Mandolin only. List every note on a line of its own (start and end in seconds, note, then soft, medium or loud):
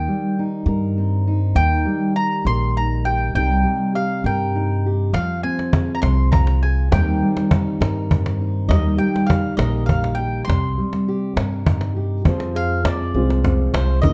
0.00 0.42 G5 medium
1.56 2.12 G5 medium
2.16 2.46 A#5 medium
2.47 2.74 C6 medium
2.77 3.05 A#5 medium
3.05 3.34 G5 medium
3.35 3.95 G5 medium
3.95 4.26 F5 medium
4.26 4.88 G5 medium
5.14 5.41 F5 medium
5.43 5.94 G#5 medium
5.95 6.01 A#5 medium
6.02 6.30 C6 medium
6.32 6.60 A#5 medium
6.63 6.92 G#5 medium
6.92 7.55 G5 medium
8.69 8.97 D#5 medium
8.98 9.30 G5 medium
9.27 9.57 F5 medium
9.57 9.86 D#5 medium
9.86 10.18 F5 medium
10.15 10.44 G5 medium
10.45 11.61 C6 medium
12.56 12.87 F5 medium
12.87 13.73 D5 medium
13.74 14.01 C5 medium
14.02 14.13 D#5 medium